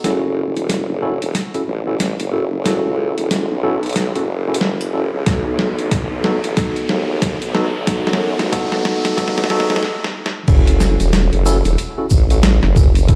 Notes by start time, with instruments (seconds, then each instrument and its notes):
0.04 wobble bass F#1, tine electric piano C#4 E4 F#4 A4, snare, closed hi-hat, riser
0.56 wobble bass E1, closed hi-hat
0.70 snare, closed hi-hat
0.89 wobble bass F#1
1.02 tine electric piano C#4 E4 F#4 A4
1.22 wobble bass E1, closed hi-hat
1.35 snare, closed hi-hat
1.54 tine electric piano C#4 E4 F#4 A4, closed hi-hat
1.68 wobble bass A1
1.87 tine electric piano C#4 E4 F#4 A4
2.00 snare, closed hi-hat
2.20 wobble bass F#1, closed hi-hat
2.33 tine electric piano C#4 E4 F#4 A4
2.65 tine electric piano C#4 E4 F#4 A4, snare, closed hi-hat
2.86 wobble bass C#2
3.18 wobble bass E1, closed hi-hat
3.31 snare, closed hi-hat
3.51 wobble bass B1
3.63 tine electric piano C#4 E4 F#4 A4
3.83 closed hi-hat
3.86 closed hi-hat
3.89 closed hi-hat
3.93 snare, closed hi-hat
3.96 closed hi-hat
4.15 wobble bass F#1, tine electric piano C#4 E4 F#4 A4, closed hi-hat
4.48 tine electric piano C#4 E4 F#4 A4
4.54 closed hi-hat
4.61 snare
4.81 closed hi-hat
4.94 tine electric piano C#4 E4 F#4 A4
5.13 wobble bass C#2
5.26 wobble bass B1, tine electric piano B3 D#4 F#4 A4, kick, snare, closed hi-hat
5.59 snare
5.79 wobble bass A1, closed hi-hat
5.91 kick, snare, closed hi-hat
6.11 wobble bass B1
6.24 tine electric piano B3 D#4 F#4 A4, snare
6.44 wobble bass A1, closed hi-hat
6.57 tine electric piano B3 D#4 F#4 A4, kick, snare, closed hi-hat
6.76 closed hi-hat
6.89 wobble bass D#2, snare
7.22 kick, snare, closed hi-hat
7.42 wobble bass B1, closed hi-hat
7.55 tine electric piano B3 D#4 F#4 A4, snare
7.87 tine electric piano B3 D#4 F#4 A4, kick, snare, closed hi-hat
8.07 wobble bass F#2, snare
8.13 snare
8.39 wobble bass A1, snare, closed hi-hat
8.52 tine electric piano B3 D#4 F#4 A4, kick, snare, closed hi-hat
8.72 wobble bass A1, snare
8.85 snare
9.05 snare, closed hi-hat
9.17 wobble bass A1, tine electric piano B3 D#4 F#4 A4, kick, snare, closed hi-hat
9.28 snare
9.38 snare, closed hi-hat
9.44 snare
9.50 wobble bass D#2, tine electric piano B3 D#4 F#4 A4, snare
9.60 snare
9.70 snare
9.76 snare
9.83 snare
10.04 snare
10.26 snare
10.48 wobble bass F#1, tine electric piano C#4 E4 F#4 A4, kick, crash, shaker
10.67 closed hi-hat
10.80 snare, shaker
11.00 wobble bass E1, closed hi-hat, shaker
11.13 snare, closed hi-hat, shaker
11.33 wobble bass F#1, closed hi-hat
11.46 tine electric piano C#4 E4 F#4 A4, shaker
11.65 wobble bass E1, closed hi-hat, shaker
11.78 closed hi-hat, shaker
11.98 tine electric piano C#4 E4 F#4 A4
12.10 wobble bass A1, kick, shaker
12.30 tine electric piano C#4 E4 F#4 A4, closed hi-hat, shaker
12.43 snare, closed hi-hat, shaker
12.63 wobble bass F#1, snare
12.76 tine electric piano C#4 E4 F#4 A4, kick, shaker
12.95 closed hi-hat, shaker
13.08 tine electric piano C#4 E4 F#4 A4, kick, closed hi-hat, shaker